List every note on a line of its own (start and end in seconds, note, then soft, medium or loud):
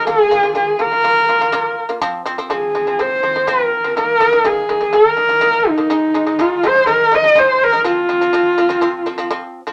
0.07 0.26 A#3 medium
0.07 0.26 F4 medium
0.07 0.53 G#4 loud
0.31 0.41 A#3 medium
0.31 0.41 F4 medium
0.43 0.53 A#3 medium
0.43 0.53 F4 medium
0.55 0.75 A#3 medium
0.55 0.75 F4 medium
0.55 0.82 G#4 medium
0.79 0.89 A#3 medium
0.79 0.90 F4 medium
0.79 1.78 A#4 medium
0.92 1.02 A#3 soft
0.92 1.02 F4 soft
1.04 1.24 A#3 medium
1.04 1.24 F4 medium
1.29 1.38 A#3 medium
1.29 1.39 F4 medium
1.41 1.51 A#3 medium
1.41 1.51 F4 medium
1.52 1.82 A#3 loud
1.52 1.82 F4 loud
1.89 1.99 A#3 medium
1.89 1.99 F4 medium
2.01 2.21 F3 loud
2.01 2.21 C4 medium
2.25 2.36 F3 medium
2.25 2.36 C4 medium
2.38 2.48 F3 medium
2.38 2.48 C4 medium
2.50 2.70 F3 medium
2.50 2.70 C4 medium
2.50 3.02 G#4 medium
2.75 2.85 F3 medium
2.75 2.85 C4 medium
2.87 2.97 F3 medium
2.87 2.97 C4 medium
2.99 3.19 F3 medium
2.99 3.19 C4 medium
2.99 3.50 C5 medium
3.23 3.33 F3 medium
3.23 3.33 C4 medium
3.36 3.46 F3 medium
3.36 3.46 C4 medium
3.47 3.77 F3 medium
3.47 3.77 C4 medium
3.47 3.97 A#4 medium
3.84 3.94 F3 medium
3.84 3.94 C4 medium
3.97 4.16 D#3 medium
3.97 4.16 A#3 medium
3.97 4.47 A#4 medium
4.20 4.30 D#3 medium
4.20 4.31 A#3 medium
4.33 4.43 D#3 medium
4.33 4.43 A#3 medium
4.44 4.64 D#3 medium
4.44 4.64 A#3 medium
4.44 4.95 G#4 medium
4.69 4.79 D#3 medium
4.69 4.79 A#3 medium
4.81 4.91 D#3 medium
4.81 4.91 A#3 medium
4.93 5.13 D#3 medium
4.93 5.13 A#3 medium
4.93 5.70 A#4 loud
5.17 5.27 D#3 medium
5.17 5.27 A#3 medium
5.29 5.39 D#3 medium
5.29 5.40 A#3 medium
5.41 5.71 D#3 medium
5.41 5.71 A#3 medium
5.68 6.43 D#4 medium
5.78 5.88 D#3 medium
5.78 5.88 A#3 medium
5.90 6.10 G#3 medium
5.90 6.10 D#4 medium
6.14 6.25 G#3 medium
6.14 6.25 D#4 medium
6.26 6.37 G#3 medium
6.26 6.37 D#4 medium
6.39 6.59 G#3 medium
6.39 6.59 D#4 medium
6.39 6.68 F4 medium
6.63 6.73 G#3 medium
6.63 6.73 D#4 medium
6.63 6.89 C5 loud
6.75 6.85 G#3 medium
6.75 6.85 D#4 soft
6.87 7.07 G#3 medium
6.87 7.07 D#4 medium
6.87 7.16 A#4 medium
7.12 7.22 G#3 medium
7.12 7.22 D#4 medium
7.12 7.40 D#5 loud
7.24 7.34 G#3 medium
7.24 7.34 D#4 medium
7.35 7.65 G#3 medium
7.35 7.65 D#4 medium
7.35 7.65 C5 medium
7.64 7.87 A#4 medium
7.72 7.83 G#3 medium
7.72 7.83 D#4 medium
7.84 8.04 F3 medium
7.84 8.04 C4 medium
7.84 9.28 F4 medium
8.09 8.19 F3 medium
8.09 8.19 C4 medium
8.21 8.31 F3 medium
8.21 8.31 C4 medium
8.33 8.53 F3 medium
8.33 8.53 C4 loud
8.58 8.68 F3 medium
8.58 8.68 C4 medium
8.69 8.79 F3 medium
8.69 8.79 C4 medium
8.81 9.01 F3 medium
8.81 9.01 C4 medium
9.06 9.16 F3 medium
9.06 9.16 C4 medium
9.18 9.28 F3 medium
9.18 9.28 C4 medium
9.31 9.60 F3 loud
9.31 9.60 C4 loud
9.67 9.73 F3 medium
9.67 9.73 C4 medium